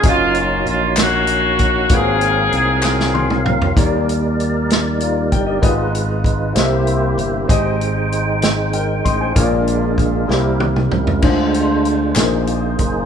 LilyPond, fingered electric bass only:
\new Staff \with { instrumentName = "Fingered electric bass" } { \clef bass \time 6/8 \key aes \mixolydian \tempo 4. = 64 ges,,4 bes,,2 | aes,,4 c,2 | \key ees \major ees,2~ ees,8 g,,8 | aes,,4. c,4 g,,8 |
aes,,2~ aes,,8 a,,8 | bes,,4. c,4 des,8 | d,4. bes,,4 ges,,8 | }